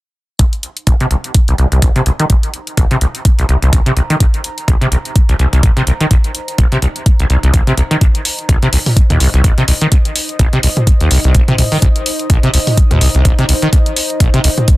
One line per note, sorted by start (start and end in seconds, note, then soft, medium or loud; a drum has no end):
0.39 0.44 C2 medium
0.39 14.77 D#4 medium
0.39 kick loud
0.39 closed hi-hat medium
0.53 closed hi-hat soft
0.63 14.77 C5 medium
0.63 closed hi-hat medium
0.77 closed hi-hat soft
0.87 0.94 A#1 medium
0.87 kick loud
0.87 closed hi-hat medium
0.99 1.06 C3 loud
0.99 8.63 A#5 medium
0.99 closed hi-hat soft
1.11 1.15 C2 medium
1.11 closed hi-hat medium
1.24 closed hi-hat soft
1.34 kick loud
1.34 closed hi-hat medium
1.48 1.54 C2 medium
1.48 closed hi-hat soft
1.58 1.66 C2 medium
1.58 closed hi-hat soft
1.72 1.80 C2 medium
1.72 closed hi-hat soft
1.82 1.90 A#1 medium
1.82 kick loud
1.82 closed hi-hat medium
1.96 2.01 C3 loud
1.96 closed hi-hat soft
2.06 2.10 C2 medium
2.06 closed hi-hat medium
2.19 2.25 D#3 medium
2.19 closed hi-hat soft
2.30 2.34 C2 medium
2.30 kick loud
2.30 closed hi-hat medium
2.43 closed hi-hat soft
2.54 closed hi-hat medium
2.67 closed hi-hat soft
2.77 2.85 A#1 medium
2.77 kick loud
2.77 closed hi-hat medium
2.91 2.97 C3 loud
2.91 closed hi-hat soft
3.01 3.06 C2 medium
3.01 closed hi-hat medium
3.15 closed hi-hat soft
3.25 kick loud
3.25 closed hi-hat medium
3.39 3.44 C2 medium
3.39 closed hi-hat soft
3.49 3.56 C2 medium
3.49 closed hi-hat soft
3.62 3.71 C2 medium
3.62 closed hi-hat soft
3.73 3.80 A#1 medium
3.73 kick loud
3.73 closed hi-hat medium
3.86 3.92 C3 loud
3.86 closed hi-hat soft
3.96 4.01 C2 medium
3.96 closed hi-hat medium
4.10 4.16 D#3 medium
4.10 closed hi-hat soft
4.20 4.25 C2 medium
4.20 kick loud
4.20 closed hi-hat medium
4.34 closed hi-hat soft
4.44 closed hi-hat medium
4.58 closed hi-hat soft
4.68 4.75 A#1 medium
4.68 kick loud
4.68 closed hi-hat medium
4.81 4.87 C3 loud
4.81 closed hi-hat soft
4.92 4.96 C2 medium
4.92 closed hi-hat medium
5.05 closed hi-hat soft
5.16 kick loud
5.16 closed hi-hat medium
5.29 5.35 C2 medium
5.29 closed hi-hat soft
5.39 5.47 C2 medium
5.39 closed hi-hat soft
5.53 5.61 C2 medium
5.53 closed hi-hat soft
5.63 5.71 A#1 medium
5.63 kick loud
5.63 closed hi-hat medium
5.77 5.82 C3 loud
5.77 closed hi-hat soft
5.87 5.91 C2 medium
5.87 closed hi-hat medium
6.01 6.06 D#3 medium
6.01 closed hi-hat soft
6.11 6.15 C2 medium
6.11 kick loud
6.11 closed hi-hat medium
6.24 closed hi-hat soft
6.35 closed hi-hat medium
6.48 closed hi-hat soft
6.58 6.66 A#1 medium
6.58 kick loud
6.58 closed hi-hat medium
6.72 6.78 C3 loud
6.72 closed hi-hat soft
6.82 6.87 C2 medium
6.82 closed hi-hat medium
6.96 closed hi-hat soft
7.06 kick loud
7.06 closed hi-hat medium
7.20 7.25 C2 medium
7.20 closed hi-hat soft
7.30 7.37 C2 medium
7.30 closed hi-hat soft
7.43 7.52 C2 medium
7.43 closed hi-hat soft
7.54 7.61 A#1 medium
7.54 kick loud
7.54 closed hi-hat medium
7.67 7.73 C3 loud
7.67 closed hi-hat soft
7.77 7.82 C2 medium
7.77 closed hi-hat medium
7.91 7.97 D#3 medium
7.91 closed hi-hat soft
8.01 8.06 C2 medium
8.01 kick loud
8.01 closed hi-hat medium
8.15 closed hi-hat soft
8.25 open hi-hat loud
8.39 closed hi-hat soft
8.49 8.56 A#1 medium
8.49 kick loud
8.49 closed hi-hat medium
8.61 8.68 C3 loud
8.61 14.77 D#5 medium
8.61 closed hi-hat soft
8.73 8.77 C2 medium
8.73 open hi-hat loud
8.86 mid tom medium
8.86 open hi-hat medium
8.96 kick loud
8.96 closed hi-hat medium
9.10 9.19 D#2 medium
9.10 closed hi-hat soft
9.10 mid tom medium
9.20 9.28 C2 medium
9.20 open hi-hat loud
9.34 9.42 C2 medium
9.34 closed hi-hat soft
9.44 9.52 A#1 medium
9.44 kick loud
9.44 closed hi-hat medium
9.58 9.63 C3 loud
9.58 closed hi-hat soft
9.68 9.72 C2 medium
9.68 open hi-hat loud
9.81 9.87 D#3 medium
9.81 closed hi-hat soft
9.92 9.96 C2 medium
9.92 kick loud
9.92 closed hi-hat medium
10.05 closed hi-hat soft
10.16 open hi-hat loud
10.29 closed hi-hat soft
10.39 10.47 A#1 medium
10.39 kick medium
10.39 closed hi-hat medium
10.53 10.59 C3 loud
10.53 closed hi-hat soft
10.63 10.68 C2 medium
10.63 open hi-hat loud
10.77 closed hi-hat soft
10.77 mid tom medium
10.87 kick loud
10.87 closed hi-hat medium
11.01 11.09 D#2 medium
11.01 closed hi-hat soft
11.11 11.18 C2 medium
11.11 open hi-hat loud
11.24 11.33 C2 medium
11.24 closed hi-hat soft
11.35 11.42 A#1 medium
11.35 kick medium
11.35 closed hi-hat medium
11.48 11.54 C3 loud
11.48 closed hi-hat soft
11.48 mid tom medium
11.58 11.63 C2 medium
11.58 mid tom medium
11.58 open hi-hat medium
11.72 11.78 D#3 medium
11.72 open hi-hat medium
11.82 11.87 C2 medium
11.82 kick loud
11.82 closed hi-hat medium
11.96 closed hi-hat soft
12.06 open hi-hat medium
12.19 closed hi-hat soft
12.30 12.37 A#1 medium
12.30 kick medium
12.30 closed hi-hat medium
12.43 12.49 C3 loud
12.43 closed hi-hat soft
12.54 12.58 C2 medium
12.54 open hi-hat medium
12.67 mid tom medium
12.67 open hi-hat medium
12.77 kick loud
12.77 closed hi-hat medium
12.91 12.99 D#2 medium
12.91 closed hi-hat soft
12.91 mid tom medium
13.01 13.09 C2 medium
13.01 open hi-hat loud
13.15 13.23 C2 medium
13.15 closed hi-hat soft
13.25 13.33 A#1 medium
13.25 kick medium
13.25 closed hi-hat medium
13.39 13.44 C3 loud
13.39 closed hi-hat soft
13.49 13.53 C2 medium
13.49 open hi-hat medium
13.62 13.68 D#3 medium
13.62 closed hi-hat soft
13.73 13.77 C2 medium
13.73 kick loud
13.73 closed hi-hat medium
13.86 closed hi-hat soft
13.96 open hi-hat loud
14.10 closed hi-hat soft
14.20 14.28 A#1 medium
14.20 kick loud
14.20 closed hi-hat medium
14.34 14.39 C3 loud
14.34 closed hi-hat soft
14.44 14.49 C2 medium
14.44 open hi-hat loud
14.58 closed hi-hat soft
14.58 mid tom medium
14.68 kick loud
14.68 closed hi-hat medium